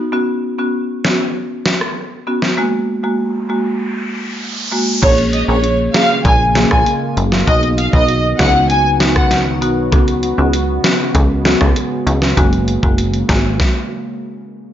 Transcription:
0.12 0.55 B3 medium
0.12 0.55 C#4 medium
0.12 0.55 F#4 loud
0.58 0.77 B3 medium
0.58 0.77 C#4 medium
0.58 0.77 F#4 medium
1.04 1.23 B3 medium
1.04 1.23 C#4 medium
1.04 1.23 F#4 medium
1.04 snare loud
1.66 snare loud
1.81 cross-stick loud
2.27 2.55 B3 medium
2.27 2.55 C#4 medium
2.27 2.55 F#4 medium
2.42 snare medium
2.57 2.76 G#3 medium
2.57 2.76 A#3 medium
2.57 2.76 F#4 loud
2.57 riser medium
3.03 3.46 G#3 medium
3.03 3.46 A#3 medium
3.03 3.46 F#4 medium
3.49 3.78 G#3 medium
3.49 3.78 A#3 medium
3.49 3.78 F#4 medium
4.72 4.90 G#3 medium
4.72 4.91 A#3 medium
4.72 4.91 F#4 medium
5.02 5.44 A#1 loud
5.02 7.45 C#3 medium
5.02 7.45 G#3 medium
5.02 5.45 A#3 medium
5.02 7.45 A#3 medium
5.02 5.45 C#4 medium
5.02 7.45 F4 medium
5.02 5.45 G#4 loud
5.02 5.16 C#5 loud
5.02 kick loud
5.02 closed hi-hat medium
5.02 crash loud
5.18 closed hi-hat soft
5.33 5.47 D#5 medium
5.33 closed hi-hat medium
5.48 5.89 A#1 loud
5.48 5.91 A#3 medium
5.48 5.91 C#4 medium
5.48 5.91 G#4 medium
5.48 5.76 C#5 medium
5.64 closed hi-hat medium
5.94 6.22 A#3 medium
5.94 6.23 C#4 medium
5.94 6.23 G#4 medium
5.94 6.22 F5 medium
5.94 snare loud
5.94 closed hi-hat medium
6.25 6.66 A#1 loud
6.25 6.39 G#5 medium
6.25 kick loud
6.25 closed hi-hat medium
6.55 6.74 A#3 medium
6.55 6.74 C#4 medium
6.55 6.74 G#4 medium
6.55 snare loud
6.55 closed hi-hat medium
6.71 6.85 A#1 medium
6.71 6.84 G#5 medium
6.71 kick loud
6.71 cross-stick loud
6.86 closed hi-hat medium
7.17 7.44 F#1 medium
7.17 closed hi-hat medium
7.32 snare medium
7.47 7.88 B1 loud
7.47 9.90 D#3 medium
7.47 9.90 F#3 medium
7.47 7.90 B3 medium
7.47 12.33 B3 medium
7.47 7.90 D#4 medium
7.47 13.56 F#4 medium
7.47 7.90 F#4 loud
7.47 7.61 D#5 medium
7.47 kick loud
7.47 closed hi-hat medium
7.63 closed hi-hat soft
7.78 7.92 F5 medium
7.78 closed hi-hat medium
7.93 8.34 B1 loud
7.93 8.36 B3 medium
7.93 8.36 D#4 medium
7.93 8.36 F#4 medium
7.93 8.20 D#5 medium
7.93 kick medium
8.09 closed hi-hat medium
8.39 9.63 C#2 loud
8.39 8.67 B3 medium
8.39 8.68 D#4 medium
8.39 8.68 F#4 medium
8.39 8.66 F#5 medium
8.39 kick medium
8.39 snare loud
8.39 closed hi-hat medium
8.70 8.83 G#5 medium
8.70 closed hi-hat medium
9.00 9.19 B3 medium
9.00 9.19 D#4 medium
9.00 9.19 F#4 medium
9.00 snare loud
9.00 closed hi-hat medium
9.16 9.29 F#5 medium
9.16 kick loud
9.16 cross-stick loud
9.31 snare medium
9.31 closed hi-hat medium
9.62 9.94 B1 medium
9.62 9.90 B3 medium
9.62 9.90 D#4 medium
9.62 9.90 F#4 medium
9.62 closed hi-hat medium
9.92 10.33 C#2 loud
9.92 12.35 C#3 medium
9.92 13.56 G#3 medium
9.92 10.35 B3 medium
9.92 10.35 C#4 medium
9.92 10.35 F#4 loud
9.92 kick loud
9.92 closed hi-hat medium
9.92 high bongo medium
10.08 closed hi-hat soft
10.23 closed hi-hat medium
10.38 10.79 C#2 medium
10.38 10.80 B3 medium
10.38 10.81 C#4 medium
10.38 10.81 F#4 medium
10.53 closed hi-hat medium
10.84 11.12 B3 medium
10.84 11.12 C#4 medium
10.84 11.13 F#4 medium
10.84 snare loud
10.84 closed hi-hat medium
11.15 11.56 C#2 loud
11.15 kick loud
11.15 closed hi-hat medium
11.15 high bongo medium
11.45 11.64 B3 medium
11.45 11.64 C#4 medium
11.45 11.64 F#4 medium
11.45 snare loud
11.45 closed hi-hat medium
11.45 high bongo medium
11.61 11.74 C#2 medium
11.61 kick loud
11.61 cross-stick loud
11.61 high bongo medium
11.76 closed hi-hat medium
12.07 12.34 C#2 loud
12.07 closed hi-hat medium
12.07 low bongo medium
12.22 snare medium
12.37 12.78 F#1 loud
12.37 13.59 C#3 medium
12.37 12.79 G#3 medium
12.37 12.80 A#3 medium
12.37 13.59 A#3 medium
12.37 12.80 F#4 loud
12.37 kick loud
12.37 closed hi-hat medium
12.37 high bongo medium
12.53 closed hi-hat medium
12.68 closed hi-hat medium
12.83 13.24 F#1 loud
12.83 13.25 G#3 medium
12.83 13.25 A#3 medium
12.83 13.26 F#4 medium
12.83 kick loud
12.98 closed hi-hat medium
13.14 closed hi-hat medium
13.29 13.58 G#1 medium
13.29 13.57 G#3 medium
13.29 13.57 A#3 medium
13.29 13.57 F#4 medium
13.29 kick medium
13.29 snare loud
13.29 closed hi-hat medium
13.60 kick loud
13.60 snare medium

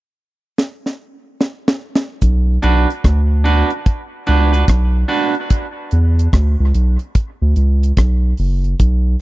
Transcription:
0.58 snare medium
0.86 snare soft
1.41 snare medium
1.68 snare medium
1.95 snare medium
2.22 2.58 B1 loud
2.22 kick loud
2.22 closed hi-hat medium
2.22 cabasa medium
2.62 2.86 B1 loud
2.62 2.87 D4 medium
2.62 2.88 F#4 medium
2.62 2.88 B4 medium
2.62 closed hi-hat medium
2.90 closed hi-hat medium
3.04 3.63 D2 medium
3.04 kick medium
3.04 cross-stick loud
3.04 closed hi-hat medium
3.44 3.69 D4 medium
3.44 3.70 F#4 medium
3.44 3.70 B4 medium
3.44 closed hi-hat medium
3.70 closed hi-hat soft
3.86 kick loud
3.86 closed hi-hat medium
4.27 4.64 C#2 medium
4.27 4.52 D4 medium
4.27 4.52 F#4 medium
4.27 4.51 B4 loud
4.27 closed hi-hat medium
4.53 4.65 D4 soft
4.53 4.64 F#4 medium
4.53 4.64 B4 medium
4.53 closed hi-hat medium
4.68 5.04 B1 medium
4.68 kick loud
4.68 cross-stick loud
4.68 closed hi-hat loud
5.08 5.34 D4 medium
5.08 5.34 F#4 medium
5.08 5.34 B4 medium
5.08 open hi-hat medium
5.35 closed hi-hat soft
5.50 kick loud
5.50 closed hi-hat loud
5.91 6.28 E2 medium
5.91 closed hi-hat medium
6.19 closed hi-hat medium
6.33 6.56 D2 medium
6.33 kick loud
6.33 cross-stick loud
6.33 closed hi-hat medium
6.60 6.73 C#2 medium
6.74 6.97 B1 medium
6.74 closed hi-hat medium
6.99 closed hi-hat soft
7.15 kick loud
7.15 closed hi-hat medium
7.42 7.55 D2 medium
7.56 7.92 C#2 medium
7.56 closed hi-hat medium
7.83 closed hi-hat medium
7.97 8.33 B1 medium
7.97 kick loud
7.97 cross-stick loud
7.97 closed hi-hat medium
8.37 8.75 F#1 medium
8.37 open hi-hat medium
8.64 closed hi-hat soft
8.80 9.16 B1 loud
8.80 kick loud
8.80 closed hi-hat medium

